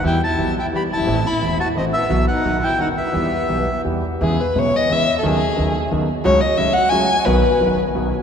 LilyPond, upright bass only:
\new Staff \with { instrumentName = "Upright bass" } { \clef bass \time 3/4 \key e \minor \tempo 4 = 174 e,16. r8 r32 b,,16. r8 r32 e,16. r16 fis,,32 g,,32 gis,,32 | a,,16. r8 r32 e,,16. r8 r32 a,,16. r8 r32 | b,,16. r8 r32 b,,16. r8 r32 fis,,16. r8 r32 | e,16. r8 r32 b,,16. r8 r32 e,16. r8 r32 |
\key e \major e,16. r8 r32 b,,16. r8 r32 e,16. r8 r32 | dis,16. r8 r32 dis,16. r8 r32 dis,16. r8 r32 | cis,16. r8 r32 cis,16. r8 r32 cis,16. r8 r32 | b,,16. r8 r32 fis,,16. r8 r32 b,,16. r8 r32 | }